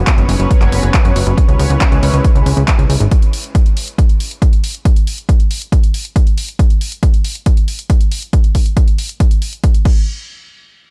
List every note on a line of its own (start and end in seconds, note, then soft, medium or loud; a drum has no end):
0.00 1.36 F#3 medium
0.00 1.34 B3 medium
0.00 1.36 C#4 medium
0.00 1.36 B4 medium
0.00 1.36 C#5 medium
0.07 kick loud
0.07 clap loud
0.07 closed hi-hat medium
0.18 0.25 F#1 medium
0.18 closed hi-hat medium
0.29 0.35 F#1 loud
0.29 open hi-hat medium
0.40 0.46 F#1 medium
0.40 closed hi-hat medium
0.51 kick loud
0.51 closed hi-hat medium
0.61 0.68 F#1 medium
0.61 clap soft
0.61 closed hi-hat medium
0.72 0.79 F#1 medium
0.72 open hi-hat loud
0.83 0.90 F#1 medium
0.83 closed hi-hat soft
0.94 kick loud
0.94 clap loud
0.94 closed hi-hat medium
1.05 1.12 F#2 medium
1.05 closed hi-hat medium
1.16 1.23 F#1 loud
1.16 open hi-hat loud
1.27 1.33 F#1 medium
1.27 closed hi-hat medium
1.37 3.10 G#3 medium
1.37 3.10 C#4 medium
1.37 3.10 E4 medium
1.37 3.10 B4 medium
1.37 3.10 C#5 medium
1.37 kick loud
1.37 closed hi-hat medium
1.48 1.55 C#2 medium
1.48 closed hi-hat soft
1.59 1.66 C#2 loud
1.59 open hi-hat loud
1.70 1.77 C#2 medium
1.70 closed hi-hat medium
1.81 kick loud
1.81 clap loud
1.81 closed hi-hat medium
1.92 1.99 C#2 medium
1.92 closed hi-hat soft
2.03 2.09 C#2 loud
2.03 open hi-hat medium
2.14 2.20 C#2 medium
2.14 closed hi-hat soft
2.24 kick loud
2.24 closed hi-hat medium
2.35 2.42 C#2 medium
2.35 closed hi-hat medium
2.46 2.53 C#2 loud
2.46 open hi-hat loud
2.57 2.64 C#2 medium
2.57 closed hi-hat soft
2.68 kick loud
2.68 clap loud
2.68 closed hi-hat medium
2.79 2.85 C#2 medium
2.79 closed hi-hat soft
2.90 2.96 C#2 loud
2.90 open hi-hat medium
3.00 3.07 G#1 medium
3.00 closed hi-hat soft
3.11 kick loud
3.11 closed hi-hat medium
3.22 closed hi-hat soft
3.33 open hi-hat loud
3.44 closed hi-hat medium
3.55 kick loud
3.55 closed hi-hat medium
3.66 closed hi-hat medium
3.77 open hi-hat medium
3.88 closed hi-hat soft
3.98 kick loud
3.98 closed hi-hat medium
4.09 closed hi-hat soft
4.20 open hi-hat loud
4.31 closed hi-hat soft
4.42 kick loud
4.42 closed hi-hat medium
4.53 closed hi-hat soft
4.64 open hi-hat medium
4.75 closed hi-hat soft
4.85 kick loud
4.85 closed hi-hat medium
4.96 closed hi-hat soft
5.07 open hi-hat medium
5.18 closed hi-hat medium
5.29 kick loud
5.29 closed hi-hat medium
5.40 closed hi-hat medium
5.51 open hi-hat medium
5.62 closed hi-hat soft
5.72 kick loud
5.72 closed hi-hat medium
5.83 closed hi-hat medium
5.94 open hi-hat loud
6.05 closed hi-hat soft
6.16 kick loud
6.16 closed hi-hat medium
6.27 closed hi-hat medium
6.38 open hi-hat medium
6.49 closed hi-hat medium
6.59 kick loud
6.59 closed hi-hat medium
6.70 closed hi-hat medium
6.81 open hi-hat medium
6.92 closed hi-hat medium
7.03 kick loud
7.03 closed hi-hat medium
7.14 closed hi-hat medium
7.24 open hi-hat medium
7.35 closed hi-hat medium
7.46 kick loud
7.46 closed hi-hat medium
7.57 closed hi-hat medium
7.68 open hi-hat medium
7.79 closed hi-hat medium
7.90 kick loud
7.90 closed hi-hat medium
8.01 closed hi-hat medium
8.11 open hi-hat medium
8.22 closed hi-hat medium
8.33 kick loud
8.33 closed hi-hat medium
8.44 closed hi-hat soft
8.55 kick medium
8.55 open hi-hat loud
8.66 closed hi-hat medium
8.77 kick loud
8.77 closed hi-hat medium
8.88 closed hi-hat medium
8.98 open hi-hat medium
9.09 closed hi-hat medium
9.20 kick loud
9.20 closed hi-hat medium
9.31 closed hi-hat medium
9.42 open hi-hat loud
9.53 closed hi-hat medium
9.64 kick loud
9.64 closed hi-hat medium
9.74 closed hi-hat medium
9.85 kick loud
9.85 crash medium